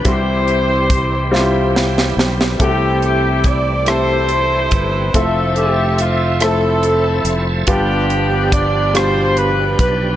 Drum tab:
HH |x-x-x-------|x-x-x-x-x-x-|x-x-x-x-x-x-|x-x-x-x-x-x-|
SD |------o-oooo|------r-----|------r-----|------r-----|
BD |o---o-------|o---o-----o-|o-----------|o---o-----o-|